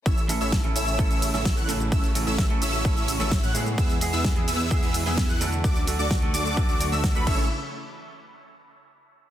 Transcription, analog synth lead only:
\new Staff \with { instrumentName = "Analog synth lead" } { \time 4/4 \key a \major \tempo 4 = 129 e'''16 r8 e'''16 r8 e'''8. e'''16 r16 e'''8 fis'''16 r8 | e'''16 r8 e'''16 r8 e'''8. e'''16 r16 e'''8 fis'''16 r8 | e'''16 r8 e'''16 r8 e'''8. e'''16 r16 e'''8 fis'''16 r8 | d'''16 r8 d'''16 r8 d'''8. d'''16 r16 e'''8 b''16 e'''8 |
r1 | }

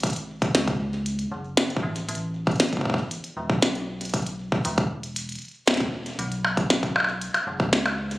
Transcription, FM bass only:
\new Staff \with { instrumentName = "FM bass" } { \clef bass \time 4/4 \key a \major \tempo 4 = 117 gis,,4 cis,4. fis,,4 a,,16 r16 | a,,2~ a,,16 r16 e,,16 b,,4~ b,,16~ | b,,4 e,,4. r8 e,,4 | b,,2~ b,,16 r16 fis,,16 cis,4~ cis,16 | }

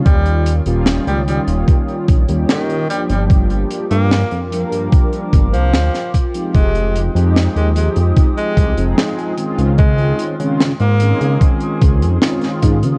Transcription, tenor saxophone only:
\new Staff \with { instrumentName = "Tenor saxophone" } { \clef bass \time 4/4 \key f \minor \tempo 4 = 74 g8 r8. g16 g16 r4 r16 ees8 g16 g16 | r8. bes8 r4. f8. r8 | aes8 r8. aes16 aes16 r8 aes8 r4 r16 | aes8 r8. bes8. r2 | }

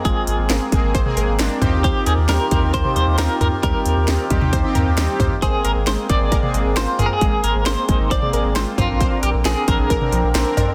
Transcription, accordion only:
\new Staff \with { instrumentName = "Accordion" } { \time 4/4 \key ees \major \tempo 4 = 134 << { <aes bes c'>2.~ <aes bes c'>8 <ees f' g'>8~ | <ees f' g'>1~ | <ees f' g'>1 | aes1~ |
aes2.~ aes8 d8~ | d1 | } \\ { r2. r8 bes8~ | bes1~ | bes1~ | bes1~ |
bes1~ | bes1 | } >> }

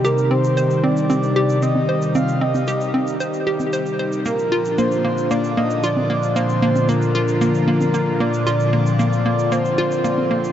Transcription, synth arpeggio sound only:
\new Staff \with { instrumentName = "Synth arpeggio sound" } { \time 4/4 \key bes \mixolydian \tempo 4 = 114 g'8 c'8 c''8 c'8 c'8 g'8 c'8 c''8 | c'8 c'8 g'8 c'8 c''8 g'8 c''8 c''8 | bes8 f'8 bes8 bes8 bes8 bes8 f'8 bes8 | bes8 bes8 bes8 f'8 bes8 bes8 bes8 bes8 |
f'8 bes8 bes8 bes8 bes8 f'8 bes8 bes8 | }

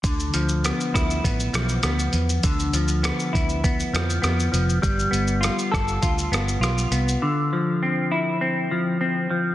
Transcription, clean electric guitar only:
\new Staff \with { instrumentName = "Clean electric guitar" } { \time 4/4 \key d \dorian \tempo 4 = 100 d8 f8 b8 e'8 b8 f8 b4 | d8 f8 b8 e'8 b8 f8 b8 f8 | g8 b8 f'8 a'8 f'8 b8 f'8 b8 | d8 f8 c'8 e'8 c'8 f8 c'8 f8 | }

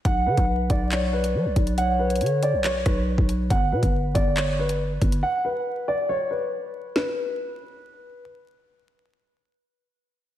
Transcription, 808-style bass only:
\new Staff \with { instrumentName = "808-style bass" } { \clef bass \time 4/4 \key b \minor \tempo 4 = 139 b,,8 d16 b,,8. b,,4. fis16 b,,16 b,,8~ | b,,4 d8. b,,8. b,,8. b,,8. | g,,8 b,16 g,,8. g,,2 g,,8 | r1 |
r1 | r1 | }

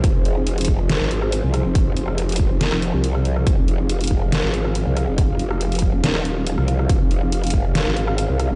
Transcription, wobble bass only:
\new Staff \with { instrumentName = "Wobble bass" } { \clef bass \time 4/4 \key f \minor \tempo 4 = 140 f,,16 f,,2 aes,,4 c,8 f,,16~ | f,,4.~ f,,16 f,,8 f,,8 c,4~ c,16 | f,,16 f,,2 aes,,4 c,8 f,,16~ | f,,4.~ f,,16 ees,,4. c,8. |
f,,16 f,,2 aes,,4 c,8 f,,16 | }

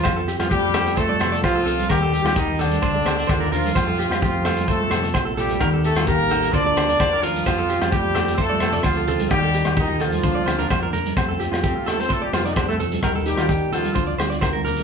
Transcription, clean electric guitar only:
\new Staff \with { instrumentName = "Clean electric guitar" } { \time 4/4 \key f \mixolydian \tempo 4 = 129 c''16 a'16 g'16 f'16 g'8 a'8 c''16 d''16 c''16 d''16 c''16 a'16 a'8 | bes'16 a'16 g'16 f'16 g'8 a'8 c''16 d''16 c''16 d''16 c''16 bes'16 bes'8 | c''16 a'16 g'16 f'16 g'8 a'8 c''16 r16 c''16 r16 c''16 a'16 a'8 | bes'16 a'16 g'16 f'16 g'8 a'8 c''16 d''16 c''16 d''16 c''16 bes'16 bes'8 |
c''16 a'16 g'16 f'16 g'8 a'8 c''16 d''16 c''16 d''16 c''16 a'16 a'8 | g'16 a'16 g'16 r16 g'8 a'8 c''16 d''16 c''16 bes'16 c''16 bes'16 bes'8 | c''16 a'16 g'16 f'16 g'8 a'8 c''16 d''16 c''16 d''16 c''16 a'16 a'8 | bes'16 a'16 g'16 f'16 g'8 a'8 c''16 d''16 c''16 d''16 c''16 bes'16 bes'8 | }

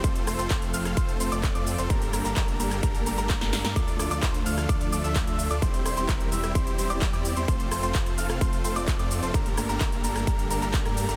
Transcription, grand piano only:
\new Staff \with { instrumentName = "Grand piano" } { \time 4/4 \key f \major \tempo 4 = 129 c'''8 c'''16 c'''16 c'''8 f'''8 c'''8 c'''16 d'''8 d'''8 c'''16 | bes''8 bes''16 bes''16 r8 bes''8 bes''8 bes''16 bes''8 bes''8 bes''16 | d'''8 d'''16 d'''16 c'''8 f'''8 d'''8 d'''16 e'''8 e'''8 d'''16 | c'''8 c'''16 c'''16 bes''8 e'''8 c'''8 c'''16 d'''8 d'''8 c'''16 |
c'''8 c'''16 c'''16 c'''8 f'''8 c'''8 c'''16 d'''8 d'''8 c'''16 | bes''8 bes''16 bes''16 bes''8 bes''8 bes''8 bes''16 bes''8 bes''8 bes''16 | }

